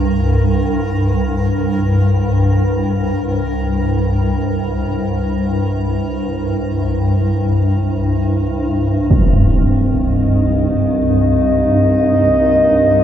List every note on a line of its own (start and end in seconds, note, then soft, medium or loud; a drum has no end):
0.00 9.11 C2 medium
0.00 9.11 G2 medium
0.00 9.15 A#4 medium
9.11 13.04 C2 medium
9.11 13.04 G2 medium
9.11 13.04 C4 medium
9.11 impact medium
9.87 13.04 D#5 medium
10.14 13.04 G4 medium
11.97 13.04 A#4 medium